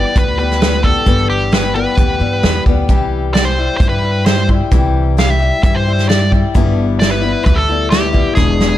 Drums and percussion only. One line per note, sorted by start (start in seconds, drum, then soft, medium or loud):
0.16 kick loud
0.16 closed hi-hat medium
0.51 snare soft
0.61 snare loud
0.61 closed hi-hat medium
0.84 kick medium
1.07 kick medium
1.07 closed hi-hat medium
1.52 snare loud
1.52 closed hi-hat medium
1.98 kick loud
1.98 closed hi-hat medium
2.43 snare loud
2.43 closed hi-hat medium
2.66 kick medium
2.89 kick loud
2.89 closed hi-hat medium
3.35 snare medium
3.35 closed hi-hat medium
3.80 kick loud
3.80 closed hi-hat medium
4.26 snare loud
4.26 closed hi-hat medium
4.49 kick medium
4.72 kick loud
4.72 closed hi-hat medium
5.18 snare medium
5.18 closed hi-hat medium
5.63 kick loud
5.63 closed hi-hat medium
5.99 snare soft
6.09 snare medium
6.09 closed hi-hat medium
6.32 kick medium
6.55 kick loud
6.55 closed hi-hat medium
7.01 snare loud
7.01 closed hi-hat medium
7.46 kick loud
7.46 closed hi-hat medium
7.91 snare loud
7.91 closed hi-hat medium
8.14 kick medium
8.37 kick loud
8.37 snare medium
8.60 snare medium